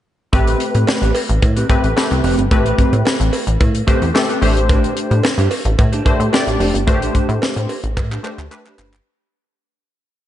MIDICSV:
0, 0, Header, 1, 6, 480
1, 0, Start_track
1, 0, Key_signature, 0, "minor"
1, 0, Tempo, 545455
1, 291, Time_signature, 4, 2, 24, 8
1, 9038, End_track
2, 0, Start_track
2, 0, Title_t, "Clean electric guitar"
2, 0, Program_c, 0, 27
2, 287, Note_on_c, 0, 60, 82
2, 291, Note_on_c, 0, 67, 86
2, 294, Note_on_c, 0, 71, 88
2, 511, Note_off_c, 0, 60, 0
2, 513, Note_off_c, 0, 67, 0
2, 514, Note_off_c, 0, 71, 0
2, 656, Note_on_c, 0, 71, 58
2, 662, Note_on_c, 0, 67, 58
2, 665, Note_on_c, 0, 60, 53
2, 757, Note_off_c, 0, 60, 0
2, 760, Note_off_c, 0, 67, 0
2, 764, Note_off_c, 0, 71, 0
2, 893, Note_on_c, 0, 71, 74
2, 900, Note_on_c, 0, 67, 72
2, 903, Note_on_c, 0, 60, 61
2, 997, Note_off_c, 0, 60, 0
2, 1002, Note_off_c, 0, 67, 0
2, 1004, Note_off_c, 0, 71, 0
2, 1374, Note_on_c, 0, 71, 77
2, 1378, Note_on_c, 0, 67, 79
2, 1382, Note_on_c, 0, 60, 69
2, 1476, Note_off_c, 0, 60, 0
2, 1479, Note_off_c, 0, 67, 0
2, 1484, Note_off_c, 0, 71, 0
2, 1968, Note_on_c, 0, 60, 81
2, 1973, Note_on_c, 0, 67, 89
2, 1977, Note_on_c, 0, 71, 90
2, 2083, Note_off_c, 0, 71, 0
2, 2090, Note_off_c, 0, 67, 0
2, 2134, Note_off_c, 0, 60, 0
2, 2333, Note_on_c, 0, 71, 85
2, 2339, Note_on_c, 0, 67, 72
2, 2343, Note_on_c, 0, 60, 65
2, 2435, Note_off_c, 0, 60, 0
2, 2440, Note_off_c, 0, 67, 0
2, 2443, Note_off_c, 0, 71, 0
2, 2446, Note_on_c, 0, 60, 67
2, 2450, Note_on_c, 0, 67, 70
2, 2454, Note_on_c, 0, 71, 83
2, 2562, Note_off_c, 0, 71, 0
2, 2570, Note_off_c, 0, 67, 0
2, 2581, Note_off_c, 0, 60, 0
2, 3403, Note_on_c, 0, 60, 83
2, 3407, Note_on_c, 0, 67, 87
2, 3412, Note_on_c, 0, 71, 89
2, 3521, Note_off_c, 0, 71, 0
2, 3527, Note_off_c, 0, 67, 0
2, 3572, Note_off_c, 0, 60, 0
2, 3773, Note_on_c, 0, 71, 74
2, 3777, Note_on_c, 0, 67, 69
2, 3781, Note_on_c, 0, 60, 69
2, 3880, Note_off_c, 0, 67, 0
2, 3882, Note_off_c, 0, 60, 0
2, 3885, Note_on_c, 0, 62, 61
2, 3891, Note_off_c, 0, 71, 0
2, 3891, Note_on_c, 0, 67, 69
2, 3894, Note_on_c, 0, 72, 66
2, 4003, Note_off_c, 0, 72, 0
2, 4009, Note_off_c, 0, 67, 0
2, 4020, Note_off_c, 0, 62, 0
2, 4125, Note_on_c, 0, 62, 78
2, 4130, Note_on_c, 0, 67, 88
2, 4134, Note_on_c, 0, 72, 90
2, 4350, Note_off_c, 0, 62, 0
2, 4352, Note_off_c, 0, 67, 0
2, 4355, Note_off_c, 0, 72, 0
2, 4490, Note_on_c, 0, 72, 62
2, 4496, Note_on_c, 0, 67, 60
2, 4500, Note_on_c, 0, 62, 56
2, 4597, Note_off_c, 0, 62, 0
2, 4601, Note_off_c, 0, 67, 0
2, 4602, Note_off_c, 0, 72, 0
2, 4732, Note_on_c, 0, 72, 82
2, 4737, Note_on_c, 0, 67, 87
2, 4741, Note_on_c, 0, 62, 71
2, 4836, Note_off_c, 0, 62, 0
2, 4841, Note_off_c, 0, 67, 0
2, 4843, Note_off_c, 0, 72, 0
2, 5212, Note_on_c, 0, 72, 80
2, 5217, Note_on_c, 0, 67, 73
2, 5221, Note_on_c, 0, 62, 71
2, 5315, Note_off_c, 0, 62, 0
2, 5319, Note_off_c, 0, 67, 0
2, 5321, Note_off_c, 0, 72, 0
2, 5804, Note_on_c, 0, 62, 86
2, 5810, Note_on_c, 0, 67, 88
2, 5813, Note_on_c, 0, 72, 92
2, 5924, Note_off_c, 0, 72, 0
2, 5932, Note_off_c, 0, 67, 0
2, 5973, Note_off_c, 0, 62, 0
2, 6180, Note_on_c, 0, 72, 77
2, 6186, Note_on_c, 0, 67, 64
2, 6190, Note_on_c, 0, 62, 62
2, 6280, Note_off_c, 0, 62, 0
2, 6285, Note_off_c, 0, 67, 0
2, 6288, Note_off_c, 0, 72, 0
2, 6290, Note_on_c, 0, 62, 68
2, 6295, Note_on_c, 0, 67, 70
2, 6299, Note_on_c, 0, 72, 70
2, 6407, Note_off_c, 0, 72, 0
2, 6414, Note_off_c, 0, 67, 0
2, 6423, Note_off_c, 0, 62, 0
2, 7137, Note_on_c, 0, 72, 64
2, 7142, Note_on_c, 0, 67, 65
2, 7147, Note_on_c, 0, 62, 54
2, 7238, Note_off_c, 0, 62, 0
2, 7244, Note_off_c, 0, 67, 0
2, 7248, Note_off_c, 0, 72, 0
2, 7249, Note_on_c, 0, 62, 73
2, 7254, Note_on_c, 0, 67, 76
2, 7258, Note_on_c, 0, 72, 83
2, 7366, Note_off_c, 0, 72, 0
2, 7372, Note_off_c, 0, 67, 0
2, 7415, Note_off_c, 0, 62, 0
2, 7617, Note_on_c, 0, 72, 75
2, 7623, Note_on_c, 0, 67, 67
2, 7626, Note_on_c, 0, 62, 77
2, 7718, Note_off_c, 0, 62, 0
2, 7724, Note_off_c, 0, 67, 0
2, 7728, Note_off_c, 0, 72, 0
2, 7729, Note_on_c, 0, 62, 65
2, 7734, Note_on_c, 0, 67, 73
2, 7738, Note_on_c, 0, 72, 71
2, 7847, Note_off_c, 0, 72, 0
2, 7853, Note_off_c, 0, 67, 0
2, 7862, Note_off_c, 0, 62, 0
2, 9038, End_track
3, 0, Start_track
3, 0, Title_t, "Analog polysynth"
3, 0, Program_c, 1, 90
3, 287, Note_on_c, 1, 57, 84
3, 289, Note_on_c, 1, 60, 79
3, 293, Note_on_c, 1, 67, 78
3, 296, Note_on_c, 1, 71, 100
3, 1057, Note_off_c, 1, 57, 0
3, 1058, Note_off_c, 1, 60, 0
3, 1061, Note_off_c, 1, 67, 0
3, 1062, Note_off_c, 1, 71, 0
3, 1489, Note_on_c, 1, 57, 85
3, 1490, Note_on_c, 1, 60, 82
3, 1493, Note_on_c, 1, 67, 75
3, 1496, Note_on_c, 1, 71, 94
3, 1684, Note_off_c, 1, 57, 0
3, 1685, Note_off_c, 1, 60, 0
3, 1687, Note_off_c, 1, 67, 0
3, 1688, Note_off_c, 1, 71, 0
3, 1726, Note_on_c, 1, 57, 86
3, 1730, Note_on_c, 1, 60, 82
3, 1733, Note_on_c, 1, 67, 79
3, 1734, Note_on_c, 1, 71, 93
3, 2117, Note_off_c, 1, 57, 0
3, 2119, Note_off_c, 1, 60, 0
3, 2121, Note_off_c, 1, 67, 0
3, 2121, Note_off_c, 1, 71, 0
3, 2211, Note_on_c, 1, 57, 102
3, 2212, Note_on_c, 1, 60, 87
3, 2214, Note_on_c, 1, 67, 82
3, 2218, Note_on_c, 1, 71, 104
3, 2980, Note_off_c, 1, 57, 0
3, 2980, Note_off_c, 1, 60, 0
3, 2981, Note_off_c, 1, 67, 0
3, 2983, Note_off_c, 1, 71, 0
3, 3406, Note_on_c, 1, 57, 81
3, 3410, Note_on_c, 1, 60, 71
3, 3411, Note_on_c, 1, 67, 85
3, 3415, Note_on_c, 1, 72, 91
3, 3603, Note_off_c, 1, 57, 0
3, 3605, Note_off_c, 1, 60, 0
3, 3606, Note_off_c, 1, 67, 0
3, 3607, Note_off_c, 1, 72, 0
3, 3645, Note_on_c, 1, 57, 88
3, 3648, Note_on_c, 1, 60, 75
3, 3650, Note_on_c, 1, 67, 86
3, 3652, Note_on_c, 1, 69, 107
3, 3875, Note_off_c, 1, 57, 0
3, 3880, Note_off_c, 1, 67, 0
3, 3885, Note_on_c, 1, 57, 96
3, 3889, Note_off_c, 1, 60, 0
3, 3889, Note_on_c, 1, 62, 76
3, 3891, Note_on_c, 1, 67, 79
3, 3892, Note_off_c, 1, 69, 0
3, 3894, Note_on_c, 1, 72, 98
3, 4659, Note_off_c, 1, 57, 0
3, 4661, Note_off_c, 1, 62, 0
3, 4662, Note_off_c, 1, 67, 0
3, 4663, Note_off_c, 1, 72, 0
3, 5326, Note_on_c, 1, 57, 89
3, 5328, Note_on_c, 1, 62, 74
3, 5331, Note_on_c, 1, 67, 70
3, 5333, Note_on_c, 1, 72, 101
3, 5523, Note_off_c, 1, 57, 0
3, 5524, Note_off_c, 1, 62, 0
3, 5526, Note_off_c, 1, 67, 0
3, 5526, Note_off_c, 1, 72, 0
3, 5566, Note_on_c, 1, 57, 86
3, 5569, Note_on_c, 1, 62, 83
3, 5571, Note_on_c, 1, 67, 82
3, 5575, Note_on_c, 1, 74, 91
3, 5957, Note_off_c, 1, 57, 0
3, 5959, Note_off_c, 1, 62, 0
3, 5960, Note_off_c, 1, 67, 0
3, 5962, Note_off_c, 1, 74, 0
3, 6046, Note_on_c, 1, 57, 99
3, 6047, Note_on_c, 1, 62, 79
3, 6051, Note_on_c, 1, 66, 69
3, 6054, Note_on_c, 1, 72, 102
3, 6109, Note_on_c, 1, 67, 86
3, 6111, Note_off_c, 1, 66, 0
3, 6817, Note_off_c, 1, 57, 0
3, 6818, Note_off_c, 1, 62, 0
3, 6821, Note_off_c, 1, 72, 0
3, 6849, Note_off_c, 1, 67, 0
3, 7244, Note_on_c, 1, 57, 81
3, 7247, Note_on_c, 1, 62, 75
3, 7250, Note_on_c, 1, 67, 71
3, 7252, Note_on_c, 1, 72, 88
3, 7442, Note_off_c, 1, 57, 0
3, 7443, Note_off_c, 1, 62, 0
3, 7445, Note_off_c, 1, 67, 0
3, 7446, Note_off_c, 1, 72, 0
3, 7486, Note_on_c, 1, 57, 83
3, 7486, Note_on_c, 1, 62, 73
3, 7489, Note_on_c, 1, 67, 78
3, 7493, Note_on_c, 1, 71, 99
3, 7877, Note_off_c, 1, 57, 0
3, 7877, Note_off_c, 1, 62, 0
3, 7879, Note_off_c, 1, 67, 0
3, 7881, Note_off_c, 1, 71, 0
3, 9038, End_track
4, 0, Start_track
4, 0, Title_t, "Analog synth bass"
4, 0, Program_c, 2, 38
4, 291, Note_on_c, 2, 33, 92
4, 484, Note_off_c, 2, 33, 0
4, 658, Note_on_c, 2, 45, 96
4, 749, Note_off_c, 2, 45, 0
4, 896, Note_on_c, 2, 33, 83
4, 988, Note_off_c, 2, 33, 0
4, 1139, Note_on_c, 2, 33, 98
4, 1230, Note_off_c, 2, 33, 0
4, 1253, Note_on_c, 2, 45, 109
4, 1446, Note_off_c, 2, 45, 0
4, 1615, Note_on_c, 2, 33, 81
4, 1707, Note_off_c, 2, 33, 0
4, 1858, Note_on_c, 2, 36, 98
4, 1949, Note_off_c, 2, 36, 0
4, 1970, Note_on_c, 2, 29, 88
4, 2073, Note_off_c, 2, 29, 0
4, 2097, Note_on_c, 2, 31, 84
4, 2188, Note_off_c, 2, 31, 0
4, 2211, Note_on_c, 2, 33, 91
4, 2404, Note_off_c, 2, 33, 0
4, 2576, Note_on_c, 2, 45, 100
4, 2668, Note_off_c, 2, 45, 0
4, 2817, Note_on_c, 2, 33, 97
4, 2908, Note_off_c, 2, 33, 0
4, 3055, Note_on_c, 2, 33, 87
4, 3147, Note_off_c, 2, 33, 0
4, 3174, Note_on_c, 2, 45, 101
4, 3366, Note_off_c, 2, 45, 0
4, 3537, Note_on_c, 2, 40, 86
4, 3628, Note_off_c, 2, 40, 0
4, 3888, Note_on_c, 2, 33, 94
4, 4276, Note_off_c, 2, 33, 0
4, 4497, Note_on_c, 2, 45, 100
4, 4588, Note_off_c, 2, 45, 0
4, 4733, Note_on_c, 2, 43, 83
4, 4826, Note_off_c, 2, 43, 0
4, 4974, Note_on_c, 2, 33, 91
4, 5067, Note_off_c, 2, 33, 0
4, 5093, Note_on_c, 2, 45, 101
4, 5286, Note_off_c, 2, 45, 0
4, 5454, Note_on_c, 2, 45, 86
4, 5547, Note_off_c, 2, 45, 0
4, 5695, Note_on_c, 2, 33, 79
4, 5787, Note_off_c, 2, 33, 0
4, 5806, Note_on_c, 2, 29, 94
4, 5911, Note_off_c, 2, 29, 0
4, 5934, Note_on_c, 2, 31, 83
4, 6051, Note_on_c, 2, 33, 92
4, 6064, Note_off_c, 2, 31, 0
4, 6244, Note_off_c, 2, 33, 0
4, 6414, Note_on_c, 2, 45, 111
4, 6507, Note_off_c, 2, 45, 0
4, 6657, Note_on_c, 2, 45, 77
4, 6748, Note_off_c, 2, 45, 0
4, 6896, Note_on_c, 2, 33, 86
4, 7014, Note_on_c, 2, 45, 115
4, 7027, Note_off_c, 2, 33, 0
4, 7206, Note_off_c, 2, 45, 0
4, 7375, Note_on_c, 2, 38, 94
4, 7467, Note_off_c, 2, 38, 0
4, 7729, Note_on_c, 2, 31, 94
4, 7923, Note_off_c, 2, 31, 0
4, 9038, End_track
5, 0, Start_track
5, 0, Title_t, "Muted clean electric guitar strokes"
5, 528, Note_on_c, 9, 29, 44
5, 616, Note_off_c, 9, 29, 0
5, 1008, Note_on_c, 9, 29, 46
5, 1096, Note_off_c, 9, 29, 0
5, 1134, Note_on_c, 9, 29, 48
5, 1222, Note_off_c, 9, 29, 0
5, 1249, Note_on_c, 9, 29, 35
5, 1337, Note_off_c, 9, 29, 0
5, 1487, Note_on_c, 9, 29, 44
5, 1575, Note_off_c, 9, 29, 0
5, 1614, Note_on_c, 9, 29, 58
5, 1702, Note_off_c, 9, 29, 0
5, 2094, Note_on_c, 9, 29, 41
5, 2182, Note_off_c, 9, 29, 0
5, 2207, Note_on_c, 9, 29, 36
5, 2295, Note_off_c, 9, 29, 0
5, 2573, Note_on_c, 9, 29, 46
5, 2661, Note_off_c, 9, 29, 0
5, 2684, Note_on_c, 9, 29, 43
5, 2772, Note_off_c, 9, 29, 0
5, 2813, Note_on_c, 9, 29, 45
5, 2901, Note_off_c, 9, 29, 0
5, 3051, Note_on_c, 9, 29, 43
5, 3139, Note_off_c, 9, 29, 0
5, 3166, Note_on_c, 9, 29, 40
5, 3254, Note_off_c, 9, 29, 0
5, 3292, Note_on_c, 9, 29, 52
5, 3380, Note_off_c, 9, 29, 0
5, 3531, Note_on_c, 9, 29, 55
5, 3619, Note_off_c, 9, 29, 0
5, 3646, Note_on_c, 9, 29, 48
5, 3734, Note_off_c, 9, 29, 0
5, 4014, Note_on_c, 9, 29, 53
5, 4102, Note_off_c, 9, 29, 0
5, 4366, Note_on_c, 9, 29, 50
5, 4454, Note_off_c, 9, 29, 0
5, 4607, Note_on_c, 9, 29, 33
5, 4695, Note_off_c, 9, 29, 0
5, 4847, Note_on_c, 9, 29, 42
5, 4935, Note_off_c, 9, 29, 0
5, 4973, Note_on_c, 9, 29, 46
5, 5061, Note_off_c, 9, 29, 0
5, 5084, Note_on_c, 9, 29, 40
5, 5172, Note_off_c, 9, 29, 0
5, 5325, Note_on_c, 9, 29, 48
5, 5413, Note_off_c, 9, 29, 0
5, 5453, Note_on_c, 9, 29, 42
5, 5541, Note_off_c, 9, 29, 0
5, 5695, Note_on_c, 9, 29, 45
5, 5783, Note_off_c, 9, 29, 0
5, 5935, Note_on_c, 9, 29, 42
5, 6023, Note_off_c, 9, 29, 0
5, 6529, Note_on_c, 9, 29, 33
5, 6617, Note_off_c, 9, 29, 0
5, 6658, Note_on_c, 9, 29, 38
5, 6746, Note_off_c, 9, 29, 0
5, 6899, Note_on_c, 9, 29, 44
5, 6987, Note_off_c, 9, 29, 0
5, 7011, Note_on_c, 9, 29, 44
5, 7099, Note_off_c, 9, 29, 0
5, 7377, Note_on_c, 9, 29, 48
5, 7465, Note_off_c, 9, 29, 0
5, 7491, Note_on_c, 9, 29, 35
5, 7579, Note_off_c, 9, 29, 0
5, 7858, Note_on_c, 9, 29, 44
5, 7946, Note_off_c, 9, 29, 0
5, 9038, End_track
6, 0, Start_track
6, 0, Title_t, "Drums"
6, 291, Note_on_c, 9, 36, 112
6, 292, Note_on_c, 9, 42, 79
6, 292, Note_on_c, 9, 56, 61
6, 379, Note_off_c, 9, 36, 0
6, 380, Note_off_c, 9, 42, 0
6, 380, Note_off_c, 9, 56, 0
6, 417, Note_on_c, 9, 42, 56
6, 505, Note_off_c, 9, 42, 0
6, 529, Note_on_c, 9, 42, 72
6, 617, Note_off_c, 9, 42, 0
6, 656, Note_on_c, 9, 42, 43
6, 744, Note_off_c, 9, 42, 0
6, 769, Note_on_c, 9, 56, 72
6, 779, Note_on_c, 9, 38, 122
6, 857, Note_off_c, 9, 56, 0
6, 867, Note_off_c, 9, 38, 0
6, 903, Note_on_c, 9, 42, 50
6, 991, Note_off_c, 9, 42, 0
6, 1008, Note_on_c, 9, 56, 74
6, 1016, Note_on_c, 9, 46, 66
6, 1096, Note_off_c, 9, 56, 0
6, 1104, Note_off_c, 9, 46, 0
6, 1137, Note_on_c, 9, 42, 49
6, 1225, Note_off_c, 9, 42, 0
6, 1253, Note_on_c, 9, 42, 67
6, 1253, Note_on_c, 9, 56, 71
6, 1255, Note_on_c, 9, 36, 104
6, 1341, Note_off_c, 9, 42, 0
6, 1341, Note_off_c, 9, 56, 0
6, 1343, Note_off_c, 9, 36, 0
6, 1377, Note_on_c, 9, 42, 66
6, 1465, Note_off_c, 9, 42, 0
6, 1492, Note_on_c, 9, 36, 96
6, 1492, Note_on_c, 9, 42, 72
6, 1494, Note_on_c, 9, 56, 73
6, 1580, Note_off_c, 9, 36, 0
6, 1580, Note_off_c, 9, 42, 0
6, 1582, Note_off_c, 9, 56, 0
6, 1618, Note_on_c, 9, 42, 47
6, 1706, Note_off_c, 9, 42, 0
6, 1731, Note_on_c, 9, 56, 71
6, 1739, Note_on_c, 9, 38, 115
6, 1819, Note_off_c, 9, 56, 0
6, 1827, Note_off_c, 9, 38, 0
6, 1859, Note_on_c, 9, 42, 43
6, 1947, Note_off_c, 9, 42, 0
6, 1970, Note_on_c, 9, 46, 69
6, 2058, Note_off_c, 9, 46, 0
6, 2100, Note_on_c, 9, 42, 57
6, 2188, Note_off_c, 9, 42, 0
6, 2211, Note_on_c, 9, 36, 121
6, 2211, Note_on_c, 9, 42, 87
6, 2212, Note_on_c, 9, 56, 75
6, 2299, Note_off_c, 9, 36, 0
6, 2299, Note_off_c, 9, 42, 0
6, 2300, Note_off_c, 9, 56, 0
6, 2339, Note_on_c, 9, 42, 55
6, 2427, Note_off_c, 9, 42, 0
6, 2451, Note_on_c, 9, 36, 78
6, 2452, Note_on_c, 9, 42, 76
6, 2539, Note_off_c, 9, 36, 0
6, 2540, Note_off_c, 9, 42, 0
6, 2577, Note_on_c, 9, 42, 45
6, 2665, Note_off_c, 9, 42, 0
6, 2688, Note_on_c, 9, 56, 69
6, 2699, Note_on_c, 9, 38, 119
6, 2776, Note_off_c, 9, 56, 0
6, 2787, Note_off_c, 9, 38, 0
6, 2821, Note_on_c, 9, 42, 53
6, 2909, Note_off_c, 9, 42, 0
6, 2929, Note_on_c, 9, 56, 72
6, 2933, Note_on_c, 9, 46, 59
6, 3017, Note_off_c, 9, 56, 0
6, 3021, Note_off_c, 9, 46, 0
6, 3056, Note_on_c, 9, 42, 57
6, 3144, Note_off_c, 9, 42, 0
6, 3173, Note_on_c, 9, 42, 70
6, 3173, Note_on_c, 9, 56, 77
6, 3174, Note_on_c, 9, 36, 107
6, 3261, Note_off_c, 9, 42, 0
6, 3261, Note_off_c, 9, 56, 0
6, 3262, Note_off_c, 9, 36, 0
6, 3297, Note_on_c, 9, 42, 62
6, 3385, Note_off_c, 9, 42, 0
6, 3411, Note_on_c, 9, 42, 74
6, 3412, Note_on_c, 9, 36, 92
6, 3415, Note_on_c, 9, 56, 73
6, 3499, Note_off_c, 9, 42, 0
6, 3500, Note_off_c, 9, 36, 0
6, 3503, Note_off_c, 9, 56, 0
6, 3537, Note_on_c, 9, 42, 48
6, 3625, Note_off_c, 9, 42, 0
6, 3650, Note_on_c, 9, 56, 70
6, 3658, Note_on_c, 9, 38, 119
6, 3738, Note_off_c, 9, 56, 0
6, 3746, Note_off_c, 9, 38, 0
6, 3780, Note_on_c, 9, 42, 46
6, 3868, Note_off_c, 9, 42, 0
6, 3891, Note_on_c, 9, 46, 76
6, 3979, Note_off_c, 9, 46, 0
6, 4022, Note_on_c, 9, 42, 60
6, 4110, Note_off_c, 9, 42, 0
6, 4131, Note_on_c, 9, 36, 115
6, 4132, Note_on_c, 9, 42, 80
6, 4133, Note_on_c, 9, 56, 73
6, 4219, Note_off_c, 9, 36, 0
6, 4220, Note_off_c, 9, 42, 0
6, 4221, Note_off_c, 9, 56, 0
6, 4261, Note_on_c, 9, 42, 50
6, 4349, Note_off_c, 9, 42, 0
6, 4371, Note_on_c, 9, 42, 76
6, 4459, Note_off_c, 9, 42, 0
6, 4498, Note_on_c, 9, 42, 40
6, 4586, Note_off_c, 9, 42, 0
6, 4606, Note_on_c, 9, 56, 78
6, 4617, Note_on_c, 9, 38, 108
6, 4694, Note_off_c, 9, 56, 0
6, 4705, Note_off_c, 9, 38, 0
6, 4741, Note_on_c, 9, 42, 47
6, 4829, Note_off_c, 9, 42, 0
6, 4847, Note_on_c, 9, 56, 72
6, 4851, Note_on_c, 9, 46, 59
6, 4935, Note_off_c, 9, 56, 0
6, 4939, Note_off_c, 9, 46, 0
6, 4975, Note_on_c, 9, 42, 54
6, 5063, Note_off_c, 9, 42, 0
6, 5092, Note_on_c, 9, 56, 75
6, 5093, Note_on_c, 9, 42, 72
6, 5094, Note_on_c, 9, 36, 104
6, 5180, Note_off_c, 9, 56, 0
6, 5181, Note_off_c, 9, 42, 0
6, 5182, Note_off_c, 9, 36, 0
6, 5215, Note_on_c, 9, 42, 62
6, 5303, Note_off_c, 9, 42, 0
6, 5331, Note_on_c, 9, 36, 95
6, 5331, Note_on_c, 9, 42, 70
6, 5334, Note_on_c, 9, 56, 65
6, 5419, Note_off_c, 9, 36, 0
6, 5419, Note_off_c, 9, 42, 0
6, 5422, Note_off_c, 9, 56, 0
6, 5458, Note_on_c, 9, 42, 51
6, 5546, Note_off_c, 9, 42, 0
6, 5570, Note_on_c, 9, 56, 69
6, 5580, Note_on_c, 9, 38, 119
6, 5658, Note_off_c, 9, 56, 0
6, 5668, Note_off_c, 9, 38, 0
6, 5700, Note_on_c, 9, 42, 43
6, 5788, Note_off_c, 9, 42, 0
6, 5811, Note_on_c, 9, 46, 72
6, 5899, Note_off_c, 9, 46, 0
6, 5941, Note_on_c, 9, 42, 56
6, 6029, Note_off_c, 9, 42, 0
6, 6051, Note_on_c, 9, 36, 106
6, 6052, Note_on_c, 9, 42, 75
6, 6055, Note_on_c, 9, 56, 68
6, 6139, Note_off_c, 9, 36, 0
6, 6140, Note_off_c, 9, 42, 0
6, 6143, Note_off_c, 9, 56, 0
6, 6180, Note_on_c, 9, 42, 60
6, 6268, Note_off_c, 9, 42, 0
6, 6291, Note_on_c, 9, 36, 73
6, 6292, Note_on_c, 9, 42, 69
6, 6379, Note_off_c, 9, 36, 0
6, 6380, Note_off_c, 9, 42, 0
6, 6418, Note_on_c, 9, 42, 43
6, 6506, Note_off_c, 9, 42, 0
6, 6529, Note_on_c, 9, 56, 81
6, 6538, Note_on_c, 9, 38, 119
6, 6617, Note_off_c, 9, 56, 0
6, 6626, Note_off_c, 9, 38, 0
6, 6662, Note_on_c, 9, 42, 52
6, 6750, Note_off_c, 9, 42, 0
6, 6770, Note_on_c, 9, 56, 64
6, 6774, Note_on_c, 9, 46, 58
6, 6858, Note_off_c, 9, 56, 0
6, 6862, Note_off_c, 9, 46, 0
6, 6896, Note_on_c, 9, 42, 54
6, 6984, Note_off_c, 9, 42, 0
6, 7013, Note_on_c, 9, 56, 76
6, 7014, Note_on_c, 9, 36, 110
6, 7019, Note_on_c, 9, 39, 53
6, 7101, Note_off_c, 9, 56, 0
6, 7102, Note_off_c, 9, 36, 0
6, 7107, Note_off_c, 9, 39, 0
6, 7147, Note_on_c, 9, 39, 51
6, 7235, Note_off_c, 9, 39, 0
6, 7254, Note_on_c, 9, 56, 76
6, 7259, Note_on_c, 9, 39, 62
6, 7342, Note_off_c, 9, 56, 0
6, 7347, Note_off_c, 9, 39, 0
6, 7385, Note_on_c, 9, 39, 67
6, 7473, Note_off_c, 9, 39, 0
6, 7491, Note_on_c, 9, 56, 73
6, 7498, Note_on_c, 9, 39, 90
6, 7579, Note_off_c, 9, 56, 0
6, 7586, Note_off_c, 9, 39, 0
6, 7624, Note_on_c, 9, 39, 64
6, 7712, Note_off_c, 9, 39, 0
6, 7735, Note_on_c, 9, 39, 93
6, 7823, Note_off_c, 9, 39, 0
6, 7862, Note_on_c, 9, 39, 87
6, 7950, Note_off_c, 9, 39, 0
6, 9038, End_track
0, 0, End_of_file